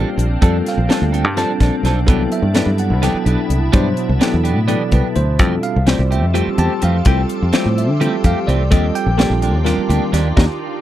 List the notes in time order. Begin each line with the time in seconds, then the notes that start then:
Already playing: G3 A#3 C4 D4 F4 G4 D5
0.18 A#1, closed hi-hat
0.42 F2 F3 G3 C4 D4 F4 A4, kick, closed hi-hat
0.66 F5, snare, closed hi-hat
0.78 A#1
0.89 F3 G3 C4 D4 F4 A4, snare, closed hi-hat
1.02 D2
1.13 C4 D4 A4 G5, closed hi-hat
1.24 G2
1.36 F3 G3 C4 D4 F4 A4 A5, snare, closed hi-hat
1.60 A#1 C4 D4 A4, kick, snare, closed hi-hat
1.83 B1 F3 C4 D4 A4, snare, closed hi-hat
2.06 C2 B2 E3 F#3 B3 D4 E4 G4 A4, kick, closed hi-hat
2.32 E5, closed hi-hat
2.42 G2
2.54 E3 F#3 B3 D4 E4 G4 A4, snare, closed hi-hat
2.66 G2
2.78 F#5, closed hi-hat
2.90 C2
3.02 E3 F#3 B3 D4 E4 G4 A4 G5, snare, closed hi-hat
3.14 muted fingered electric bass stroke
3.25 B1 B3 D4 G4, closed hi-hat
3.50 C2, closed hi-hat
3.72 G2 B2 E3 F#3 B3 D4 E4 G4 C5, kick, closed hi-hat
3.97 closed hi-hat
4.09 C2
4.20 E3 F#3 B3 D4 E4 G4 A4, snare, closed hi-hat
4.34 E2
4.44 B3 D4 G4, closed hi-hat
4.57 A2
4.68 E3 F#3 B3 D4 E4 G4 A4 D5, closed hi-hat
4.92 C2 B3 D4 G4 B4, kick, closed hi-hat
5.16 D2 C5, closed hi-hat
5.39 F2 E3 F3 G3 A3 C4 F4 G4 A4, kick, closed hi-hat
5.63 F5, closed hi-hat
5.76 C2
5.87 E3 G3 A3 C4 F4 G4 C5 D5, snare, closed hi-hat
5.99 C2
6.11 A3 C4 G4 E5, closed hi-hat
6.23 F2
6.34 E3 G3 A3 C4 F4 G4, closed hi-hat
6.47 muted fingered electric bass stroke
6.58 E2 A3 C4 G4 A5, closed hi-hat
6.82 F2 E3 A3 C4 G4 F5, closed hi-hat
7.05 C2 E3 G3 A3 C4 F4 G4 A4 G5, kick, closed hi-hat
7.29 closed hi-hat
7.42 F2
7.53 E3 G3 A3 C4 F4 G4 C5, snare, closed hi-hat
7.66 A2
7.78 E5, closed hi-hat
7.90 D3
8.00 E3 G3 A3 C4 F4 G4 A4, closed hi-hat
8.24 F2 A3 C4 G4 F5, kick, closed hi-hat
8.47 C2 E3 A3 C4 G4 D5, closed hi-hat
8.71 D#2 D#3 F3 G3 A#3 C4 D4 F4 G4 A4 D#5, kick, closed hi-hat
8.95 G5, closed hi-hat
9.06 A#1
9.17 F3 G3 A#3 C4 D4 F4 G4 A4, snare, closed hi-hat
9.30 A#1
9.42 A#3 D4 G4, closed hi-hat
9.54 D#2
9.64 F3 G3 A#3 C4 D4 F4 G4 A#4, snare, closed hi-hat
9.78 muted fingered electric bass stroke
9.89 D2 A#3 D4 G4, closed hi-hat
10.12 D#2 F3 A#3 D4 G4, snare, closed hi-hat
10.37 D#2 A#3 D4 D#4 G4, kick, snare